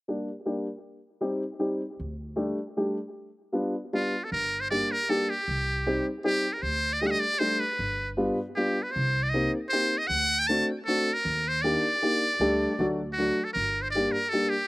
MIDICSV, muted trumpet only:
0, 0, Header, 1, 2, 480
1, 0, Start_track
1, 0, Key_signature, -2, "minor"
1, 0, Tempo, 385604
1, 1046, Time_signature, 3, 2, 24, 8
1, 18266, End_track
2, 0, Start_track
2, 0, Title_t, "Muted trumpet"
2, 0, Program_c, 0, 59
2, 4916, Note_on_c, 0, 65, 73
2, 5278, Note_on_c, 0, 69, 49
2, 5297, Note_off_c, 0, 65, 0
2, 5374, Note_off_c, 0, 69, 0
2, 5381, Note_on_c, 0, 70, 82
2, 5730, Note_on_c, 0, 72, 69
2, 5749, Note_off_c, 0, 70, 0
2, 5846, Note_off_c, 0, 72, 0
2, 5853, Note_on_c, 0, 74, 75
2, 6120, Note_on_c, 0, 70, 79
2, 6139, Note_off_c, 0, 74, 0
2, 6343, Note_on_c, 0, 69, 72
2, 6361, Note_off_c, 0, 70, 0
2, 6593, Note_on_c, 0, 67, 78
2, 6612, Note_off_c, 0, 69, 0
2, 7548, Note_off_c, 0, 67, 0
2, 7775, Note_on_c, 0, 67, 86
2, 8128, Note_on_c, 0, 70, 55
2, 8147, Note_off_c, 0, 67, 0
2, 8245, Note_on_c, 0, 72, 92
2, 8264, Note_off_c, 0, 70, 0
2, 8624, Note_on_c, 0, 74, 78
2, 8642, Note_off_c, 0, 72, 0
2, 8732, Note_on_c, 0, 75, 71
2, 8750, Note_off_c, 0, 74, 0
2, 8799, Note_on_c, 0, 78, 70
2, 8817, Note_off_c, 0, 75, 0
2, 8846, Note_on_c, 0, 75, 96
2, 8864, Note_off_c, 0, 78, 0
2, 8964, Note_on_c, 0, 74, 87
2, 8983, Note_off_c, 0, 75, 0
2, 9196, Note_on_c, 0, 72, 94
2, 9215, Note_off_c, 0, 74, 0
2, 9455, Note_on_c, 0, 71, 73
2, 9474, Note_off_c, 0, 72, 0
2, 10075, Note_off_c, 0, 71, 0
2, 10646, Note_on_c, 0, 67, 74
2, 10987, Note_on_c, 0, 71, 59
2, 11006, Note_off_c, 0, 67, 0
2, 11091, Note_on_c, 0, 72, 82
2, 11110, Note_off_c, 0, 71, 0
2, 11491, Note_on_c, 0, 74, 77
2, 11509, Note_off_c, 0, 72, 0
2, 11570, Note_on_c, 0, 75, 70
2, 11588, Note_off_c, 0, 74, 0
2, 11844, Note_off_c, 0, 75, 0
2, 12060, Note_on_c, 0, 72, 89
2, 12421, Note_on_c, 0, 75, 71
2, 12439, Note_off_c, 0, 72, 0
2, 12537, Note_on_c, 0, 78, 100
2, 12556, Note_off_c, 0, 75, 0
2, 12933, Note_on_c, 0, 79, 91
2, 12951, Note_off_c, 0, 78, 0
2, 13033, Note_on_c, 0, 81, 82
2, 13051, Note_off_c, 0, 79, 0
2, 13288, Note_off_c, 0, 81, 0
2, 13511, Note_on_c, 0, 69, 86
2, 13859, Note_on_c, 0, 70, 74
2, 13878, Note_off_c, 0, 69, 0
2, 14292, Note_on_c, 0, 72, 76
2, 14311, Note_off_c, 0, 70, 0
2, 14463, Note_on_c, 0, 74, 83
2, 14481, Note_off_c, 0, 72, 0
2, 16053, Note_off_c, 0, 74, 0
2, 16343, Note_on_c, 0, 66, 74
2, 16735, Note_on_c, 0, 69, 60
2, 16754, Note_off_c, 0, 66, 0
2, 16833, Note_off_c, 0, 69, 0
2, 16841, Note_on_c, 0, 70, 77
2, 17203, Note_on_c, 0, 72, 68
2, 17221, Note_off_c, 0, 70, 0
2, 17300, Note_off_c, 0, 72, 0
2, 17308, Note_on_c, 0, 74, 71
2, 17574, Note_on_c, 0, 70, 78
2, 17593, Note_off_c, 0, 74, 0
2, 17787, Note_on_c, 0, 69, 88
2, 17806, Note_off_c, 0, 70, 0
2, 18043, Note_on_c, 0, 67, 73
2, 18061, Note_off_c, 0, 69, 0
2, 18266, Note_off_c, 0, 67, 0
2, 18266, End_track
0, 0, End_of_file